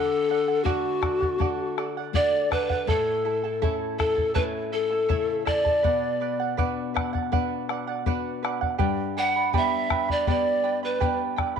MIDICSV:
0, 0, Header, 1, 5, 480
1, 0, Start_track
1, 0, Key_signature, 2, "minor"
1, 0, Tempo, 739827
1, 1863, Time_signature, 4, 2, 24, 8
1, 7524, End_track
2, 0, Start_track
2, 0, Title_t, "Charango"
2, 0, Program_c, 0, 24
2, 0, Note_on_c, 0, 69, 65
2, 0, Note_on_c, 0, 74, 69
2, 0, Note_on_c, 0, 78, 78
2, 178, Note_off_c, 0, 69, 0
2, 182, Note_off_c, 0, 74, 0
2, 182, Note_off_c, 0, 78, 0
2, 188, Note_on_c, 0, 69, 59
2, 195, Note_on_c, 0, 74, 54
2, 200, Note_on_c, 0, 78, 58
2, 303, Note_off_c, 0, 69, 0
2, 304, Note_off_c, 0, 78, 0
2, 307, Note_off_c, 0, 74, 0
2, 312, Note_on_c, 0, 78, 47
2, 319, Note_on_c, 0, 74, 40
2, 417, Note_off_c, 0, 74, 0
2, 418, Note_off_c, 0, 78, 0
2, 422, Note_on_c, 0, 69, 73
2, 425, Note_on_c, 0, 74, 78
2, 426, Note_on_c, 0, 78, 84
2, 651, Note_off_c, 0, 69, 0
2, 652, Note_off_c, 0, 74, 0
2, 658, Note_off_c, 0, 78, 0
2, 659, Note_on_c, 0, 69, 54
2, 660, Note_on_c, 0, 74, 66
2, 666, Note_on_c, 0, 78, 60
2, 775, Note_off_c, 0, 78, 0
2, 779, Note_off_c, 0, 69, 0
2, 780, Note_off_c, 0, 74, 0
2, 783, Note_on_c, 0, 78, 44
2, 796, Note_on_c, 0, 74, 41
2, 902, Note_off_c, 0, 78, 0
2, 904, Note_off_c, 0, 74, 0
2, 906, Note_on_c, 0, 69, 79
2, 913, Note_on_c, 0, 74, 75
2, 915, Note_on_c, 0, 78, 77
2, 1144, Note_off_c, 0, 69, 0
2, 1147, Note_off_c, 0, 74, 0
2, 1148, Note_off_c, 0, 78, 0
2, 1151, Note_on_c, 0, 69, 52
2, 1155, Note_on_c, 0, 74, 64
2, 1159, Note_on_c, 0, 78, 62
2, 1266, Note_off_c, 0, 69, 0
2, 1268, Note_off_c, 0, 74, 0
2, 1270, Note_off_c, 0, 78, 0
2, 1279, Note_on_c, 0, 78, 49
2, 1287, Note_on_c, 0, 74, 41
2, 1389, Note_off_c, 0, 74, 0
2, 1391, Note_off_c, 0, 78, 0
2, 1392, Note_on_c, 0, 69, 82
2, 1397, Note_on_c, 0, 74, 81
2, 1398, Note_on_c, 0, 78, 87
2, 1618, Note_off_c, 0, 69, 0
2, 1621, Note_off_c, 0, 74, 0
2, 1625, Note_off_c, 0, 78, 0
2, 1625, Note_on_c, 0, 69, 59
2, 1629, Note_on_c, 0, 74, 61
2, 1633, Note_on_c, 0, 78, 66
2, 1741, Note_off_c, 0, 78, 0
2, 1744, Note_off_c, 0, 69, 0
2, 1746, Note_off_c, 0, 74, 0
2, 1749, Note_on_c, 0, 78, 46
2, 1762, Note_on_c, 0, 74, 43
2, 1865, Note_on_c, 0, 76, 68
2, 1866, Note_off_c, 0, 78, 0
2, 1866, Note_on_c, 0, 73, 68
2, 1867, Note_off_c, 0, 74, 0
2, 1867, Note_on_c, 0, 64, 70
2, 1870, Note_on_c, 0, 69, 71
2, 1871, Note_on_c, 0, 81, 79
2, 2099, Note_off_c, 0, 64, 0
2, 2100, Note_off_c, 0, 76, 0
2, 2103, Note_off_c, 0, 69, 0
2, 2105, Note_off_c, 0, 73, 0
2, 2107, Note_on_c, 0, 64, 56
2, 2108, Note_off_c, 0, 81, 0
2, 2108, Note_on_c, 0, 76, 58
2, 2111, Note_on_c, 0, 69, 55
2, 2117, Note_on_c, 0, 81, 52
2, 2222, Note_off_c, 0, 81, 0
2, 2225, Note_off_c, 0, 64, 0
2, 2225, Note_off_c, 0, 69, 0
2, 2226, Note_off_c, 0, 76, 0
2, 2230, Note_on_c, 0, 81, 47
2, 2233, Note_on_c, 0, 69, 48
2, 2237, Note_on_c, 0, 64, 38
2, 2340, Note_off_c, 0, 64, 0
2, 2341, Note_off_c, 0, 81, 0
2, 2343, Note_off_c, 0, 69, 0
2, 2347, Note_on_c, 0, 64, 82
2, 2348, Note_on_c, 0, 73, 66
2, 2348, Note_on_c, 0, 76, 75
2, 2349, Note_on_c, 0, 81, 82
2, 2351, Note_on_c, 0, 69, 82
2, 2579, Note_off_c, 0, 76, 0
2, 2582, Note_off_c, 0, 69, 0
2, 2583, Note_off_c, 0, 64, 0
2, 2586, Note_on_c, 0, 76, 54
2, 2587, Note_off_c, 0, 73, 0
2, 2587, Note_off_c, 0, 81, 0
2, 2590, Note_on_c, 0, 69, 56
2, 2591, Note_on_c, 0, 64, 61
2, 2596, Note_on_c, 0, 81, 64
2, 2686, Note_off_c, 0, 81, 0
2, 2694, Note_off_c, 0, 69, 0
2, 2694, Note_on_c, 0, 81, 49
2, 2699, Note_off_c, 0, 64, 0
2, 2702, Note_on_c, 0, 69, 43
2, 2706, Note_off_c, 0, 76, 0
2, 2707, Note_on_c, 0, 64, 38
2, 2813, Note_off_c, 0, 64, 0
2, 2815, Note_off_c, 0, 69, 0
2, 2815, Note_off_c, 0, 81, 0
2, 2816, Note_on_c, 0, 73, 78
2, 2819, Note_on_c, 0, 76, 66
2, 2821, Note_on_c, 0, 64, 74
2, 2823, Note_on_c, 0, 69, 80
2, 2823, Note_on_c, 0, 81, 85
2, 3056, Note_off_c, 0, 76, 0
2, 3059, Note_off_c, 0, 64, 0
2, 3061, Note_off_c, 0, 69, 0
2, 3061, Note_off_c, 0, 73, 0
2, 3063, Note_on_c, 0, 76, 50
2, 3064, Note_off_c, 0, 81, 0
2, 3067, Note_on_c, 0, 64, 59
2, 3069, Note_on_c, 0, 69, 56
2, 3073, Note_on_c, 0, 81, 56
2, 3175, Note_off_c, 0, 81, 0
2, 3183, Note_on_c, 0, 81, 48
2, 3185, Note_off_c, 0, 64, 0
2, 3185, Note_off_c, 0, 69, 0
2, 3185, Note_off_c, 0, 76, 0
2, 3192, Note_on_c, 0, 69, 50
2, 3193, Note_on_c, 0, 64, 41
2, 3297, Note_off_c, 0, 64, 0
2, 3298, Note_off_c, 0, 69, 0
2, 3298, Note_off_c, 0, 81, 0
2, 3300, Note_on_c, 0, 73, 77
2, 3302, Note_on_c, 0, 76, 79
2, 3304, Note_on_c, 0, 64, 81
2, 3305, Note_on_c, 0, 69, 80
2, 3306, Note_on_c, 0, 81, 84
2, 3530, Note_off_c, 0, 76, 0
2, 3536, Note_off_c, 0, 64, 0
2, 3536, Note_off_c, 0, 69, 0
2, 3538, Note_on_c, 0, 76, 61
2, 3540, Note_off_c, 0, 81, 0
2, 3543, Note_off_c, 0, 73, 0
2, 3544, Note_on_c, 0, 64, 56
2, 3544, Note_on_c, 0, 69, 56
2, 3548, Note_on_c, 0, 81, 64
2, 3657, Note_off_c, 0, 81, 0
2, 3662, Note_off_c, 0, 76, 0
2, 3663, Note_off_c, 0, 69, 0
2, 3664, Note_on_c, 0, 81, 50
2, 3665, Note_off_c, 0, 64, 0
2, 3670, Note_on_c, 0, 69, 45
2, 3674, Note_on_c, 0, 64, 41
2, 3779, Note_off_c, 0, 69, 0
2, 3782, Note_on_c, 0, 71, 69
2, 3786, Note_off_c, 0, 81, 0
2, 3788, Note_on_c, 0, 74, 74
2, 3790, Note_off_c, 0, 64, 0
2, 3791, Note_on_c, 0, 78, 70
2, 4017, Note_off_c, 0, 71, 0
2, 4022, Note_off_c, 0, 74, 0
2, 4025, Note_on_c, 0, 71, 54
2, 4027, Note_off_c, 0, 78, 0
2, 4030, Note_on_c, 0, 74, 56
2, 4035, Note_on_c, 0, 78, 60
2, 4142, Note_off_c, 0, 78, 0
2, 4146, Note_off_c, 0, 71, 0
2, 4149, Note_off_c, 0, 74, 0
2, 4150, Note_on_c, 0, 78, 53
2, 4159, Note_on_c, 0, 74, 45
2, 4262, Note_off_c, 0, 74, 0
2, 4265, Note_off_c, 0, 78, 0
2, 4265, Note_on_c, 0, 71, 79
2, 4270, Note_on_c, 0, 74, 87
2, 4272, Note_on_c, 0, 78, 86
2, 4497, Note_off_c, 0, 71, 0
2, 4503, Note_off_c, 0, 74, 0
2, 4505, Note_off_c, 0, 78, 0
2, 4505, Note_on_c, 0, 71, 59
2, 4510, Note_on_c, 0, 74, 62
2, 4513, Note_on_c, 0, 78, 68
2, 4618, Note_off_c, 0, 78, 0
2, 4626, Note_off_c, 0, 71, 0
2, 4626, Note_off_c, 0, 74, 0
2, 4626, Note_on_c, 0, 78, 54
2, 4634, Note_on_c, 0, 74, 42
2, 4745, Note_off_c, 0, 74, 0
2, 4746, Note_off_c, 0, 78, 0
2, 4748, Note_on_c, 0, 71, 73
2, 4753, Note_on_c, 0, 74, 79
2, 4754, Note_on_c, 0, 78, 94
2, 4981, Note_off_c, 0, 71, 0
2, 4986, Note_off_c, 0, 74, 0
2, 4988, Note_off_c, 0, 78, 0
2, 4989, Note_on_c, 0, 71, 52
2, 4994, Note_on_c, 0, 74, 60
2, 4996, Note_on_c, 0, 78, 62
2, 5101, Note_off_c, 0, 78, 0
2, 5108, Note_off_c, 0, 71, 0
2, 5109, Note_on_c, 0, 78, 56
2, 5110, Note_off_c, 0, 74, 0
2, 5119, Note_on_c, 0, 74, 45
2, 5224, Note_off_c, 0, 74, 0
2, 5228, Note_off_c, 0, 78, 0
2, 5230, Note_on_c, 0, 71, 77
2, 5232, Note_on_c, 0, 74, 85
2, 5238, Note_on_c, 0, 78, 100
2, 5460, Note_off_c, 0, 71, 0
2, 5467, Note_on_c, 0, 71, 57
2, 5469, Note_off_c, 0, 74, 0
2, 5470, Note_off_c, 0, 78, 0
2, 5476, Note_on_c, 0, 74, 67
2, 5478, Note_on_c, 0, 78, 63
2, 5579, Note_off_c, 0, 78, 0
2, 5586, Note_on_c, 0, 78, 48
2, 5587, Note_off_c, 0, 71, 0
2, 5589, Note_off_c, 0, 74, 0
2, 5597, Note_on_c, 0, 74, 41
2, 5695, Note_off_c, 0, 74, 0
2, 5699, Note_on_c, 0, 67, 76
2, 5700, Note_off_c, 0, 78, 0
2, 5700, Note_on_c, 0, 79, 71
2, 5701, Note_on_c, 0, 71, 81
2, 5703, Note_on_c, 0, 74, 83
2, 5703, Note_on_c, 0, 83, 76
2, 5940, Note_off_c, 0, 79, 0
2, 5942, Note_off_c, 0, 67, 0
2, 5943, Note_off_c, 0, 71, 0
2, 5944, Note_off_c, 0, 74, 0
2, 5944, Note_off_c, 0, 83, 0
2, 5948, Note_on_c, 0, 79, 56
2, 5953, Note_on_c, 0, 71, 57
2, 5953, Note_on_c, 0, 74, 60
2, 5959, Note_on_c, 0, 83, 59
2, 6066, Note_off_c, 0, 79, 0
2, 6066, Note_off_c, 0, 83, 0
2, 6069, Note_off_c, 0, 71, 0
2, 6069, Note_off_c, 0, 74, 0
2, 6074, Note_on_c, 0, 83, 48
2, 6078, Note_on_c, 0, 74, 41
2, 6082, Note_on_c, 0, 71, 39
2, 6182, Note_off_c, 0, 74, 0
2, 6183, Note_off_c, 0, 71, 0
2, 6186, Note_on_c, 0, 67, 71
2, 6187, Note_off_c, 0, 83, 0
2, 6188, Note_on_c, 0, 79, 83
2, 6189, Note_on_c, 0, 74, 82
2, 6191, Note_on_c, 0, 71, 75
2, 6195, Note_on_c, 0, 83, 80
2, 6414, Note_off_c, 0, 79, 0
2, 6421, Note_off_c, 0, 71, 0
2, 6422, Note_on_c, 0, 79, 52
2, 6423, Note_off_c, 0, 74, 0
2, 6425, Note_off_c, 0, 67, 0
2, 6425, Note_off_c, 0, 83, 0
2, 6428, Note_on_c, 0, 71, 54
2, 6430, Note_on_c, 0, 74, 52
2, 6433, Note_on_c, 0, 83, 60
2, 6536, Note_off_c, 0, 83, 0
2, 6542, Note_off_c, 0, 74, 0
2, 6543, Note_off_c, 0, 79, 0
2, 6544, Note_on_c, 0, 83, 46
2, 6546, Note_off_c, 0, 71, 0
2, 6550, Note_on_c, 0, 74, 41
2, 6556, Note_on_c, 0, 71, 35
2, 6660, Note_off_c, 0, 83, 0
2, 6661, Note_off_c, 0, 71, 0
2, 6663, Note_off_c, 0, 74, 0
2, 6664, Note_on_c, 0, 67, 75
2, 6668, Note_on_c, 0, 79, 71
2, 6668, Note_on_c, 0, 83, 72
2, 6669, Note_on_c, 0, 71, 73
2, 6671, Note_on_c, 0, 74, 79
2, 6892, Note_off_c, 0, 79, 0
2, 6894, Note_off_c, 0, 71, 0
2, 6896, Note_off_c, 0, 74, 0
2, 6898, Note_off_c, 0, 83, 0
2, 6900, Note_on_c, 0, 79, 54
2, 6902, Note_on_c, 0, 71, 49
2, 6903, Note_off_c, 0, 67, 0
2, 6904, Note_on_c, 0, 74, 59
2, 6906, Note_on_c, 0, 83, 57
2, 7019, Note_off_c, 0, 83, 0
2, 7021, Note_off_c, 0, 79, 0
2, 7022, Note_off_c, 0, 71, 0
2, 7023, Note_off_c, 0, 74, 0
2, 7026, Note_on_c, 0, 83, 50
2, 7032, Note_on_c, 0, 74, 44
2, 7038, Note_on_c, 0, 71, 36
2, 7131, Note_off_c, 0, 71, 0
2, 7134, Note_off_c, 0, 74, 0
2, 7138, Note_off_c, 0, 83, 0
2, 7139, Note_on_c, 0, 71, 76
2, 7140, Note_on_c, 0, 67, 80
2, 7142, Note_on_c, 0, 74, 81
2, 7143, Note_on_c, 0, 79, 80
2, 7145, Note_on_c, 0, 83, 85
2, 7365, Note_off_c, 0, 79, 0
2, 7372, Note_off_c, 0, 71, 0
2, 7373, Note_on_c, 0, 79, 58
2, 7375, Note_off_c, 0, 74, 0
2, 7377, Note_off_c, 0, 83, 0
2, 7379, Note_on_c, 0, 71, 70
2, 7380, Note_off_c, 0, 67, 0
2, 7383, Note_on_c, 0, 74, 61
2, 7384, Note_on_c, 0, 83, 68
2, 7493, Note_off_c, 0, 83, 0
2, 7495, Note_off_c, 0, 74, 0
2, 7497, Note_off_c, 0, 79, 0
2, 7500, Note_off_c, 0, 71, 0
2, 7501, Note_on_c, 0, 83, 50
2, 7503, Note_on_c, 0, 74, 52
2, 7524, Note_off_c, 0, 74, 0
2, 7524, Note_off_c, 0, 83, 0
2, 7524, End_track
3, 0, Start_track
3, 0, Title_t, "Pan flute"
3, 0, Program_c, 1, 75
3, 0, Note_on_c, 1, 69, 86
3, 417, Note_on_c, 1, 66, 85
3, 427, Note_off_c, 1, 69, 0
3, 1205, Note_off_c, 1, 66, 0
3, 1397, Note_on_c, 1, 74, 87
3, 1634, Note_on_c, 1, 71, 81
3, 1643, Note_off_c, 1, 74, 0
3, 1875, Note_on_c, 1, 69, 75
3, 1885, Note_off_c, 1, 71, 0
3, 2350, Note_off_c, 1, 69, 0
3, 2587, Note_on_c, 1, 69, 72
3, 2809, Note_off_c, 1, 69, 0
3, 2819, Note_on_c, 1, 71, 82
3, 2874, Note_off_c, 1, 71, 0
3, 3068, Note_on_c, 1, 69, 91
3, 3522, Note_off_c, 1, 69, 0
3, 3546, Note_on_c, 1, 74, 93
3, 4241, Note_off_c, 1, 74, 0
3, 5957, Note_on_c, 1, 78, 90
3, 6174, Note_off_c, 1, 78, 0
3, 6209, Note_on_c, 1, 76, 87
3, 6561, Note_on_c, 1, 74, 76
3, 6571, Note_off_c, 1, 76, 0
3, 6672, Note_off_c, 1, 74, 0
3, 6677, Note_on_c, 1, 74, 88
3, 7004, Note_off_c, 1, 74, 0
3, 7037, Note_on_c, 1, 71, 62
3, 7252, Note_off_c, 1, 71, 0
3, 7524, End_track
4, 0, Start_track
4, 0, Title_t, "Nylon-string guitar"
4, 0, Program_c, 2, 24
4, 0, Note_on_c, 2, 50, 61
4, 416, Note_on_c, 2, 57, 49
4, 419, Note_on_c, 2, 62, 43
4, 422, Note_on_c, 2, 66, 52
4, 884, Note_off_c, 2, 57, 0
4, 886, Note_off_c, 2, 62, 0
4, 887, Note_off_c, 2, 66, 0
4, 898, Note_on_c, 2, 62, 44
4, 899, Note_on_c, 2, 57, 47
4, 905, Note_on_c, 2, 66, 50
4, 1366, Note_off_c, 2, 62, 0
4, 1367, Note_off_c, 2, 57, 0
4, 1370, Note_off_c, 2, 66, 0
4, 1383, Note_on_c, 2, 57, 46
4, 1386, Note_on_c, 2, 62, 43
4, 1387, Note_on_c, 2, 66, 52
4, 1836, Note_off_c, 2, 50, 0
4, 1849, Note_off_c, 2, 57, 0
4, 1851, Note_off_c, 2, 62, 0
4, 1852, Note_off_c, 2, 66, 0
4, 1864, Note_on_c, 2, 45, 60
4, 2349, Note_on_c, 2, 57, 47
4, 2353, Note_on_c, 2, 61, 44
4, 2357, Note_on_c, 2, 64, 51
4, 2813, Note_off_c, 2, 57, 0
4, 2815, Note_off_c, 2, 61, 0
4, 2818, Note_off_c, 2, 64, 0
4, 2834, Note_on_c, 2, 61, 43
4, 2835, Note_on_c, 2, 57, 47
4, 2840, Note_on_c, 2, 64, 53
4, 3296, Note_off_c, 2, 61, 0
4, 3297, Note_off_c, 2, 57, 0
4, 3299, Note_off_c, 2, 64, 0
4, 3312, Note_on_c, 2, 57, 44
4, 3313, Note_on_c, 2, 49, 40
4, 3318, Note_on_c, 2, 64, 54
4, 3761, Note_off_c, 2, 45, 0
4, 3775, Note_off_c, 2, 57, 0
4, 3776, Note_off_c, 2, 49, 0
4, 3778, Note_off_c, 2, 64, 0
4, 3790, Note_on_c, 2, 47, 62
4, 4270, Note_on_c, 2, 59, 46
4, 4275, Note_on_c, 2, 62, 40
4, 4275, Note_on_c, 2, 66, 48
4, 4735, Note_off_c, 2, 59, 0
4, 4736, Note_off_c, 2, 62, 0
4, 4737, Note_off_c, 2, 66, 0
4, 4748, Note_on_c, 2, 59, 45
4, 4752, Note_on_c, 2, 62, 40
4, 4754, Note_on_c, 2, 66, 49
4, 5213, Note_off_c, 2, 59, 0
4, 5214, Note_off_c, 2, 62, 0
4, 5216, Note_off_c, 2, 66, 0
4, 5228, Note_on_c, 2, 59, 42
4, 5230, Note_on_c, 2, 62, 40
4, 5235, Note_on_c, 2, 66, 49
4, 5681, Note_off_c, 2, 47, 0
4, 5692, Note_off_c, 2, 59, 0
4, 5694, Note_off_c, 2, 62, 0
4, 5695, Note_off_c, 2, 66, 0
4, 5707, Note_on_c, 2, 43, 59
4, 6184, Note_on_c, 2, 59, 45
4, 6186, Note_on_c, 2, 62, 38
4, 6187, Note_on_c, 2, 67, 50
4, 6649, Note_off_c, 2, 59, 0
4, 6649, Note_off_c, 2, 62, 0
4, 6650, Note_off_c, 2, 67, 0
4, 6665, Note_on_c, 2, 59, 49
4, 6669, Note_on_c, 2, 67, 46
4, 6670, Note_on_c, 2, 62, 41
4, 7129, Note_off_c, 2, 59, 0
4, 7130, Note_off_c, 2, 67, 0
4, 7131, Note_off_c, 2, 62, 0
4, 7150, Note_on_c, 2, 59, 49
4, 7153, Note_on_c, 2, 62, 43
4, 7158, Note_on_c, 2, 67, 50
4, 7524, Note_off_c, 2, 43, 0
4, 7524, Note_off_c, 2, 59, 0
4, 7524, Note_off_c, 2, 62, 0
4, 7524, Note_off_c, 2, 67, 0
4, 7524, End_track
5, 0, Start_track
5, 0, Title_t, "Bombo"
5, 427, Note_on_c, 9, 43, 65
5, 492, Note_off_c, 9, 43, 0
5, 666, Note_on_c, 9, 37, 56
5, 666, Note_on_c, 9, 43, 54
5, 731, Note_off_c, 9, 37, 0
5, 731, Note_off_c, 9, 43, 0
5, 793, Note_on_c, 9, 43, 49
5, 858, Note_off_c, 9, 43, 0
5, 911, Note_on_c, 9, 43, 67
5, 976, Note_off_c, 9, 43, 0
5, 1154, Note_on_c, 9, 37, 49
5, 1219, Note_off_c, 9, 37, 0
5, 1390, Note_on_c, 9, 43, 66
5, 1455, Note_off_c, 9, 43, 0
5, 1633, Note_on_c, 9, 37, 53
5, 1633, Note_on_c, 9, 43, 51
5, 1698, Note_off_c, 9, 37, 0
5, 1698, Note_off_c, 9, 43, 0
5, 1751, Note_on_c, 9, 43, 47
5, 1816, Note_off_c, 9, 43, 0
5, 1872, Note_on_c, 9, 43, 71
5, 1937, Note_off_c, 9, 43, 0
5, 2356, Note_on_c, 9, 43, 66
5, 2421, Note_off_c, 9, 43, 0
5, 2595, Note_on_c, 9, 37, 54
5, 2595, Note_on_c, 9, 43, 52
5, 2659, Note_off_c, 9, 37, 0
5, 2659, Note_off_c, 9, 43, 0
5, 2711, Note_on_c, 9, 43, 49
5, 2776, Note_off_c, 9, 43, 0
5, 2827, Note_on_c, 9, 43, 73
5, 2892, Note_off_c, 9, 43, 0
5, 3308, Note_on_c, 9, 43, 68
5, 3373, Note_off_c, 9, 43, 0
5, 3550, Note_on_c, 9, 37, 51
5, 3550, Note_on_c, 9, 43, 50
5, 3615, Note_off_c, 9, 37, 0
5, 3615, Note_off_c, 9, 43, 0
5, 3672, Note_on_c, 9, 43, 53
5, 3737, Note_off_c, 9, 43, 0
5, 3792, Note_on_c, 9, 43, 69
5, 3857, Note_off_c, 9, 43, 0
5, 4272, Note_on_c, 9, 43, 64
5, 4337, Note_off_c, 9, 43, 0
5, 4519, Note_on_c, 9, 37, 58
5, 4519, Note_on_c, 9, 43, 54
5, 4584, Note_off_c, 9, 37, 0
5, 4584, Note_off_c, 9, 43, 0
5, 4639, Note_on_c, 9, 43, 50
5, 4703, Note_off_c, 9, 43, 0
5, 4757, Note_on_c, 9, 43, 73
5, 4822, Note_off_c, 9, 43, 0
5, 4991, Note_on_c, 9, 37, 50
5, 5056, Note_off_c, 9, 37, 0
5, 5231, Note_on_c, 9, 43, 66
5, 5296, Note_off_c, 9, 43, 0
5, 5480, Note_on_c, 9, 37, 58
5, 5545, Note_off_c, 9, 37, 0
5, 5595, Note_on_c, 9, 43, 49
5, 5660, Note_off_c, 9, 43, 0
5, 5704, Note_on_c, 9, 43, 75
5, 5769, Note_off_c, 9, 43, 0
5, 6188, Note_on_c, 9, 43, 67
5, 6253, Note_off_c, 9, 43, 0
5, 6426, Note_on_c, 9, 37, 58
5, 6426, Note_on_c, 9, 43, 55
5, 6491, Note_off_c, 9, 37, 0
5, 6491, Note_off_c, 9, 43, 0
5, 6549, Note_on_c, 9, 43, 48
5, 6614, Note_off_c, 9, 43, 0
5, 6665, Note_on_c, 9, 43, 70
5, 6730, Note_off_c, 9, 43, 0
5, 7146, Note_on_c, 9, 43, 64
5, 7211, Note_off_c, 9, 43, 0
5, 7386, Note_on_c, 9, 37, 53
5, 7386, Note_on_c, 9, 43, 49
5, 7451, Note_off_c, 9, 37, 0
5, 7451, Note_off_c, 9, 43, 0
5, 7524, End_track
0, 0, End_of_file